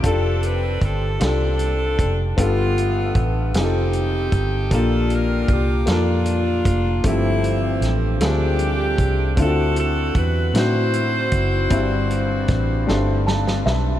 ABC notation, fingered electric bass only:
X:1
M:6/8
L:1/8
Q:3/8=51
K:Gmix
V:1 name="Fingered electric bass" clef=bass
F,,,2 G,,, C,,2 F,,, | G,,,2 A,,, F,,,2 G,,, | _B,,,2 C,, F,,2 F,,, | G,,,2 A,,, D,,2 C,, |
D,,2 E,, A,,2 ^F,,, | G,,,2 A,,, G,,,2 B,,, |]